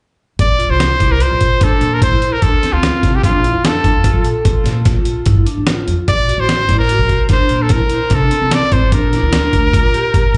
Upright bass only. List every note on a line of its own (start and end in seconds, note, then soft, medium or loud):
0.39 0.65 A#1 medium
0.69 0.96 C2 medium
1.00 1.26 C2 medium
1.31 1.48 A#1 medium
1.61 1.70 A#1 medium
1.81 2.07 A#2 medium
2.12 2.29 A#1 medium
2.43 2.60 D2 medium
2.73 2.90 D2 medium
3.03 3.21 C2 medium
3.24 3.50 A#1 medium
3.53 3.80 F2 medium
3.84 4.11 F2 medium
4.15 4.32 A#1 medium
4.45 4.54 A#1 medium
4.64 4.91 A#2 medium
4.95 5.13 A#1 medium
5.26 5.44 G2 medium
5.58 5.75 A1 medium
5.88 6.05 F2 medium
6.08 6.34 A#1 medium
6.38 6.64 A1 medium
6.69 6.95 A1 medium
6.99 7.17 A#1 medium
7.30 7.39 A#1 medium
7.50 7.77 A#2 medium
7.81 7.98 A#1 medium
8.11 8.29 C3 medium
8.41 8.59 C2 medium
8.72 8.90 A1 medium
8.92 9.19 A#1 medium
9.23 9.49 D2 medium
9.54 9.80 D2 medium
9.83 10.01 A#1 medium
10.15 10.23 A#1 medium
10.34 10.38 A#2 medium